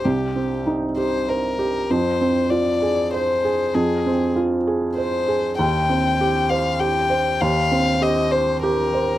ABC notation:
X:1
M:3/4
L:1/8
Q:1/4=98
K:Cm
V:1 name="Violin"
G2 z c B2 | c2 d2 c2 | A2 z2 c2 | g3 f g2 |
f2 e c B2 |]
V:2 name="Felt piano"
[C,,G] C E G c G | F,, C F A c A | F,, C F A c A | E,, C G c G c |
E,, C G c G c |]